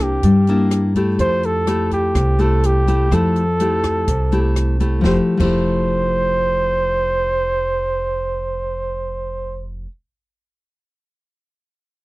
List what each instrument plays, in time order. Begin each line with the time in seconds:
Already playing: upright bass C2, nylon-string guitar C3 A#3 D4 E4
0.03 flugelhorn G4
0.23 upright bass G2, nylon-string guitar G3, kick, closed hi-hat
0.47 nylon-string guitar A#3 D4 E4, closed hi-hat
0.71 cross-stick, closed hi-hat
0.95 nylon-string guitar A3 E4 G4, kick, closed hi-hat
1.19 upright bass F2, nylon-string guitar F3, flugelhorn C5, kick, closed hi-hat
1.43 flugelhorn A4, closed hi-hat
1.67 nylon-string guitar A3 E4 G4, cross-stick, closed hi-hat
1.91 flugelhorn G4, kick, closed hi-hat
2.15 upright bass C2, nylon-string guitar C3, kick, cross-stick, closed hi-hat
2.39 nylon-string guitar A3 E4 G4, flugelhorn A4, closed hi-hat
2.63 flugelhorn G4, closed hi-hat
2.87 nylon-string guitar A3 E4 G4, kick, closed hi-hat
3.11 upright bass F2, nylon-string guitar F3 A3 E4 G4, flugelhorn A4, kick, cross-stick, closed hi-hat
3.36 closed hi-hat
3.60 nylon-string guitar A3 E4 G4, closed hi-hat
3.84 kick, cross-stick, closed hi-hat
4.08 upright bass C2, nylon-string guitar C3, kick, closed hi-hat
4.32 nylon-string guitar A3 E4 G4, closed hi-hat
4.56 cross-stick, closed hi-hat
4.80 nylon-string guitar A3 E4 G4, kick, closed hi-hat
5.01 upright bass F1, nylon-string guitar F3 A3, kick, snare
5.05 nylon-string guitar E4 G4, flugelhorn C5
5.37 upright bass F1, nylon-string guitar F3 A3 E4, flugelhorn C5, kick, crash
5.43 nylon-string guitar G4